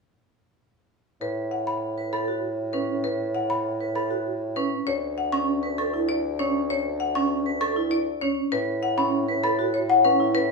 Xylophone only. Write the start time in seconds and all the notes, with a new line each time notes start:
1.67 B5
2.13 B5
3.50 B5
3.96 B5
5.32 C#6
5.78 C#6
7.15 C#6
7.61 C#6
8.98 B5
9.44 B5
9.90 F#5